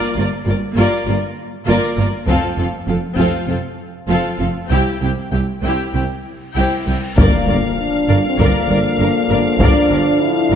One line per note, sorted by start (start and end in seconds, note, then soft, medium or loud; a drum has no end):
0.00 0.14 A#3 soft
0.00 0.14 F4 medium
0.00 0.16 A#4 medium
0.00 0.16 D5 medium
0.16 0.24 G1 soft
0.16 0.24 G2 soft
0.16 0.24 A#3 soft
0.16 0.24 F4 soft
0.16 0.28 A#4 soft
0.16 0.28 D5 soft
0.45 0.55 G1 soft
0.45 0.54 G2 soft
0.45 0.53 A#3 soft
0.45 0.53 F4 soft
0.45 0.57 A#4 soft
0.45 0.57 D5 soft
0.75 0.84 G1 soft
0.75 0.85 G2 soft
0.75 1.04 A#3 soft
0.75 1.04 F4 medium
0.75 1.06 A#4 soft
0.75 1.06 D5 soft
1.07 1.15 G1 soft
1.07 1.16 G2 soft
1.07 1.15 A#3 soft
1.07 1.15 F4 soft
1.07 1.17 A#4 soft
1.07 1.17 D5 soft
1.67 1.76 G1 soft
1.67 1.75 G2 soft
1.67 1.95 A#3 medium
1.67 1.96 F4 medium
1.67 1.96 A#4 soft
1.67 1.96 D5 medium
1.97 2.06 G1 soft
1.97 2.06 G2 soft
1.97 2.05 A#3 soft
1.97 2.05 F4 soft
1.97 2.07 A#4 soft
1.97 2.08 D5 soft
2.27 2.36 F1 soft
2.27 2.35 F2 soft
2.27 2.56 C4 soft
2.27 2.56 F4 soft
2.27 2.56 A4 soft
2.27 2.56 F5 soft
2.27 taiko soft
2.57 2.66 F1 soft
2.57 2.66 F2 soft
2.57 2.66 C4 soft
2.57 2.65 F4 soft
2.57 2.66 A4 soft
2.57 2.67 F5 soft
2.87 2.95 F1 soft
2.87 2.95 F2 soft
2.87 2.96 C4 soft
2.87 2.96 F4 soft
2.87 2.96 A4 soft
2.87 2.96 F5 soft
3.17 3.25 F1 soft
3.17 3.25 F2 soft
3.17 3.46 C4 soft
3.17 3.46 F4 soft
3.17 3.46 A4 soft
3.17 3.47 F5 soft
3.17 taiko soft
3.48 3.56 F1 soft
3.48 3.56 F2 soft
3.48 3.56 C4 soft
3.48 3.56 F4 soft
3.48 3.58 A4 soft
3.48 3.58 F5 soft
4.08 4.17 F1 soft
4.08 4.16 F2 soft
4.08 4.38 C4 soft
4.08 4.38 F4 soft
4.08 4.38 A4 soft
4.08 4.38 F5 soft
4.39 4.48 F1 soft
4.39 4.47 F2 soft
4.39 4.48 C4 soft
4.39 4.47 F4 soft
4.39 4.47 A4 soft
4.39 4.48 F5 soft
4.70 4.79 C2 soft
4.70 4.99 C4 soft
4.70 4.99 E4 soft
4.70 4.99 G4 soft
4.70 4.99 G5 soft
4.70 reverse cymbal soft
5.02 5.10 C2 soft
5.02 5.10 C4 soft
5.02 5.10 E4 soft
5.02 5.11 G4 soft
5.02 5.11 G5 soft
5.32 5.40 C2 soft
5.32 5.41 C2 soft
5.32 5.40 C4 soft
5.32 5.41 E4 soft
5.32 5.41 G4 soft
5.32 5.41 G5 soft
5.63 5.71 C2 soft
5.63 5.72 C2 soft
5.63 5.93 C4 soft
5.63 5.93 E4 soft
5.63 5.93 G4 soft
5.63 5.93 G5 soft
5.94 6.02 C2 soft
5.94 6.03 C2 soft
5.94 6.03 C4 soft
5.94 6.02 E4 soft
5.94 6.03 G4 soft
5.94 6.03 G5 soft
6.55 6.65 C2 soft
6.55 6.85 C4 soft
6.55 6.85 E4 soft
6.55 6.84 G4 soft
6.55 6.84 G5 soft
6.87 6.95 C2 soft
6.87 6.96 C4 soft
6.87 6.97 E4 soft
6.87 6.95 G4 soft
6.87 6.95 G5 soft
7.17 7.25 G1 medium
7.17 7.30 G1 soft
7.17 7.26 G2 medium
7.17 10.55 D3 soft
7.17 10.55 F3 soft
7.17 7.75 A#3 medium
7.17 7.47 A#4 soft
7.17 7.46 D5 soft
7.17 10.55 F5 soft
7.17 taiko medium
7.17 impact soft
7.47 7.55 G1 soft
7.47 7.61 G1 soft
7.47 7.56 G2 soft
7.47 7.57 A#4 soft
7.47 7.56 D5 soft
7.81 8.25 D4 medium
8.08 8.16 G1 soft
8.08 8.21 G1 soft
8.08 8.17 G2 soft
8.08 8.17 A#4 soft
8.08 8.16 D5 soft
8.27 8.41 C4 soft
8.38 8.50 G1 medium
8.38 8.47 G1 medium
8.38 8.48 G2 soft
8.38 9.60 A#3 medium
8.38 8.68 A#4 soft
8.38 8.69 D5 soft
8.38 taiko medium
8.69 8.77 G1 soft
8.69 8.81 G1 soft
8.69 8.77 G2 soft
8.69 8.78 A#4 soft
8.69 8.79 D5 soft
8.98 9.11 G1 soft
8.98 9.07 G1 soft
8.98 9.07 G2 soft
8.98 9.09 A#4 soft
9.02 9.10 A#4 soft
9.29 9.37 G1 soft
9.29 9.41 G1 soft
9.29 9.37 G2 soft
9.29 9.38 A#4 soft
9.29 9.41 D5 soft
9.58 9.71 G1 soft
9.58 9.67 G1 medium
9.58 9.66 G2 medium
9.58 10.20 D4 medium
9.58 9.89 A#4 soft
9.58 taiko medium
9.62 9.89 D5 soft
9.90 9.98 G1 soft
9.90 10.02 G1 soft
9.90 9.98 G2 soft
9.90 9.99 A#4 soft
9.90 10.01 D5 soft
10.20 10.55 E4 medium
10.50 10.55 G1 soft
10.50 10.55 G2 soft
10.50 10.55 A#4 soft